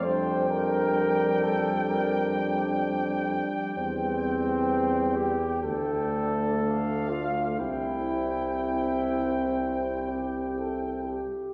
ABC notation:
X:1
M:4/4
L:1/8
Q:1/4=62
K:Cmix
V:1 name="Trumpet"
g8- | g4- g z f2 | g6- g z |]
V:2 name="Flugelhorn"
c B2 A B z3 | C3 G A3 F | E6- E z |]
V:3 name="French horn"
D8 | C3 z D4 | E2 C3 G A G |]
V:4 name="Trombone"
G,8- | G,3 z A,4 | C6- C z |]
V:5 name="Bass trombone" clef=bass
F,,6- F,, z | E,,4 D,,4 | C,,6- C,, z |]